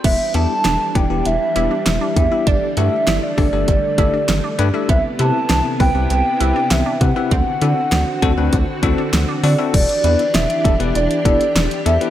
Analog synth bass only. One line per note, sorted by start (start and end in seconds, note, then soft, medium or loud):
0.04 0.16 E1 loud
0.35 0.47 E2 loud
0.65 0.77 E1 loud
0.95 1.07 E1 medium
1.11 1.22 E1 medium
1.26 1.38 E1 loud
1.56 1.68 E1 medium
1.86 1.98 E1 loud
2.17 2.28 E2 loud
2.47 2.59 G1 loud
2.77 2.89 G2 medium
3.07 3.19 G1 loud
3.38 3.50 G1 loud
3.53 3.65 G1 medium
3.68 3.80 G1 loud
3.98 4.10 G1 loud
4.29 4.41 G1 loud
4.59 4.71 G2 loud
4.89 5.01 C2 loud
5.20 5.32 C3 loud
5.50 5.62 C2 loud
5.80 5.92 C2 loud
5.95 6.07 C2 medium
6.10 6.22 C2 loud
6.41 6.53 C2 loud
6.71 6.83 C2 loud
7.01 7.13 C3 medium
7.31 7.43 D2 loud
7.62 7.74 D3 loud
7.92 8.04 D2 loud
8.23 8.34 D2 loud
8.37 8.49 D2 loud
8.53 8.65 D2 loud
8.83 8.95 D2 loud
9.13 9.25 D2 loud
9.43 9.55 D3 loud
9.74 9.86 E1 loud
10.04 10.16 E2 loud
10.34 10.46 E1 loud
10.65 10.77 E1 loud
10.80 10.92 E1 medium
10.95 11.07 E1 loud
11.25 11.37 E1 loud
11.56 11.68 E1 loud
11.86 11.98 E2 loud